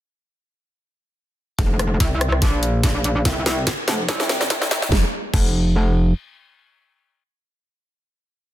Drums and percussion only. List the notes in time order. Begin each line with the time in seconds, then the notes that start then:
1.59 kick, snare, closed hi-hat
1.79 cross-stick, closed hi-hat
2.00 kick, snare, closed hi-hat
2.21 cross-stick, closed hi-hat
2.32 cross-stick
2.42 kick, snare, closed hi-hat
2.63 closed hi-hat
2.83 kick, snare, closed hi-hat
3.04 closed hi-hat
3.25 kick, snare, closed hi-hat
3.46 snare, closed hi-hat
3.67 kick, snare, closed hi-hat
3.88 snare, closed hi-hat
4.09 kick, snare, closed hi-hat
4.20 snare
4.29 snare, closed hi-hat
4.41 snare
4.50 kick, snare, closed hi-hat
4.62 snare
4.71 snare, closed hi-hat
4.82 snare
4.92 kick, snare
5.34 kick, crash